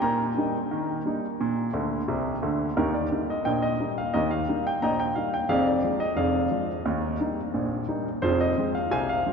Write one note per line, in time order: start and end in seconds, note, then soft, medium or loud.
0.02 0.31 A#2 medium
0.02 2.40 A#4 medium
0.02 2.39 G5 medium
0.02 1.94 A#5 medium
0.37 0.56 G3 soft
0.37 0.56 A#3 soft
0.37 0.57 D#4 soft
0.71 1.00 D#3 medium
1.05 1.24 G3 soft
1.05 1.25 A#3 soft
1.05 1.25 D#4 soft
1.41 1.69 A#2 medium
1.73 1.99 D2 medium
1.73 1.99 D3 medium
2.08 2.34 C2 medium
2.08 2.34 C3 medium
2.42 2.68 D2 medium
2.42 2.68 D3 medium
2.77 3.06 D#2 medium
2.77 3.06 D#3 medium
2.77 2.94 D#4 medium
2.77 2.94 G4 medium
2.77 2.94 A#4 medium
2.94 3.21 D5 medium
3.12 3.30 G3 soft
3.12 3.31 A#3 soft
3.12 3.31 D#4 soft
3.30 3.46 D#5 medium
3.45 3.75 A#1 medium
3.45 3.74 A#2 medium
3.45 3.62 A#4 medium
3.45 3.61 D#5 medium
3.45 3.62 G5 medium
3.62 3.90 D#5 medium
3.80 3.99 G3 soft
3.80 3.99 A#3 soft
3.80 3.99 D#4 soft
3.98 4.14 F5 medium
4.13 4.43 D#2 medium
4.13 4.43 D#3 medium
4.13 4.30 G4 medium
4.13 4.30 A#4 medium
4.13 4.31 D#5 medium
4.31 4.63 F5 medium
4.48 4.67 G3 soft
4.48 4.67 A#3 soft
4.48 4.68 D#4 soft
4.67 4.82 G5 medium
4.82 5.11 A#1 medium
4.82 5.11 A#2 medium
4.82 4.99 D#5 medium
4.82 4.98 G5 medium
4.82 4.99 A#5 medium
5.00 5.16 G5 medium
5.15 5.35 G3 soft
5.15 5.35 A#3 soft
5.15 5.35 D#4 soft
5.15 5.33 F5 medium
5.34 5.50 G5 medium
5.49 5.78 F1 medium
5.49 5.78 F2 medium
5.49 5.66 G#4 medium
5.49 5.65 D5 medium
5.49 5.67 F5 medium
5.66 5.94 D5 medium
5.83 6.02 F3 soft
5.83 6.02 G#3 soft
5.83 6.03 D4 soft
6.00 6.18 D#5 medium
6.16 6.46 F1 medium
6.16 6.46 F2 medium
6.16 8.18 G#4 medium
6.16 8.18 D5 medium
6.16 8.18 F5 medium
6.51 6.70 F3 soft
6.51 6.71 G#3 soft
6.51 6.71 D4 soft
6.86 7.15 D#2 medium
6.86 7.15 D#3 medium
7.20 7.39 G3 soft
7.20 7.39 A#3 soft
7.20 7.40 D#4 soft
7.54 7.83 A#1 medium
7.54 7.83 A#2 medium
7.89 8.07 G3 soft
7.89 8.07 A#3 soft
7.89 8.07 D#4 soft
8.22 8.52 F1 medium
8.22 8.51 F2 medium
8.22 8.39 F4 medium
8.22 8.39 G#4 medium
8.22 8.39 C5 medium
8.41 8.67 D#5 medium
8.57 8.76 F3 soft
8.57 8.76 G#3 soft
8.57 8.76 C4 soft
8.75 8.91 F5 medium
8.91 9.20 C2 medium
8.91 9.20 C3 medium
8.91 9.07 C5 medium
8.91 9.07 F5 medium
8.91 9.08 G#5 medium
9.09 9.33 F5 medium
9.26 9.33 F3 soft
9.26 9.33 G#3 soft
9.26 9.33 C4 soft